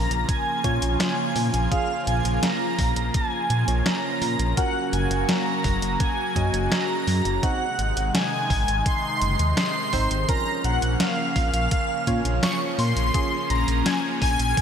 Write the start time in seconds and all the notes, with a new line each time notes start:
Already playing: C#3 F3 A#3 C#4 F4 A#4 A#5
0.11 A#1, closed hi-hat
0.29 G#5, kick, closed hi-hat
0.64 A#2 C#4 F4 C#5, kick, closed hi-hat
0.82 A#1, closed hi-hat
1.00 G#5, snare, closed hi-hat
1.36 A#2, open hi-hat
1.54 A#1, closed hi-hat
1.71 C#4 F4 G#4 F5, kick, closed hi-hat
2.07 A#1 G#5, closed hi-hat
2.25 A#1, closed hi-hat
2.43 A#5, snare, closed hi-hat
2.79 A#1, kick, open hi-hat
2.96 A#1, closed hi-hat
3.14 G#5, kick, closed hi-hat
3.50 A#2, closed hi-hat
3.68 A#1 C#4 F4 C#5, closed hi-hat
3.86 A#5, snare, closed hi-hat
4.22 A#2, open hi-hat
4.39 A#1, closed hi-hat
4.57 C#3 F#3 A#3 C#4 F#4 A#4 F#5, kick, closed hi-hat
4.93 F#1 G#5, closed hi-hat
5.11 F#1, closed hi-hat
5.29 A#5, snare, closed hi-hat
5.64 F#1, kick, open hi-hat
5.82 F#1, closed hi-hat
6.00 G#5, kick, closed hi-hat
6.36 F#2 C#4 F#4 D#5, kick, closed hi-hat
6.54 F#1, closed hi-hat
6.71 A#5, snare, closed hi-hat
7.07 F#2, open hi-hat
7.25 F#1, closed hi-hat
7.43 C3 D#3 G#3 C4 D#4 F#4 F#5, kick, closed hi-hat
7.79 G#1, closed hi-hat
7.97 G#1, closed hi-hat
8.14 G#5, snare, closed hi-hat
8.50 G#1, kick, open hi-hat
8.68 G#1, closed hi-hat
8.86 C6, kick, closed hi-hat
9.22 F#1, closed hi-hat
9.39 D#2, closed hi-hat
9.57 C6, snare, closed hi-hat
9.93 G#1 C4 D#4 C5, kick, open hi-hat
10.11 G#1, closed hi-hat
10.29 C#3 F3 A#3 C#4 A#4 A#5, kick, closed hi-hat
10.64 A#1 F#5, closed hi-hat
10.82 A#1, closed hi-hat
11.00 F5, snare, closed hi-hat
11.36 A#1 F5, kick, open hi-hat
11.53 A#1, closed hi-hat
11.71 kick, closed hi-hat
12.07 A#2 C#4 F4 C#5, kick, closed hi-hat
12.25 A#1, closed hi-hat
12.43 C#6, snare, closed hi-hat
12.79 A#2 C6, open hi-hat
12.96 A#1, closed hi-hat
13.14 C#4 F4 G#4, kick, closed hi-hat
13.50 A#1 A#5, closed hi-hat
13.68 A#1, closed hi-hat
13.86 G#5, snare, closed hi-hat
14.22 A#1 G#5, kick, open hi-hat
14.39 A#1, closed hi-hat
14.57 kick, closed hi-hat